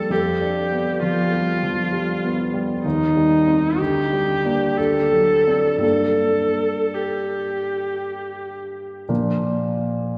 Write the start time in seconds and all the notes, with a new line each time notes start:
Already playing: D3 F3 G3 A#3 A4
0.10 F2 G4
0.41 D4
0.72 B3
1.02 F3 F4
1.32 G3
1.63 F3
1.93 G3
2.24 B3
2.54 G3
2.85 D#2 D#4
3.16 G3
3.48 C4
3.79 D2 G4
4.13 G3
4.45 A#3 D4
4.78 D2 A4
5.12 F#3
5.47 C4 D4
5.78 G2 G3 A#3 D4
5.83 A4
6.94 G4
9.09 A#2 F3 A#3 D4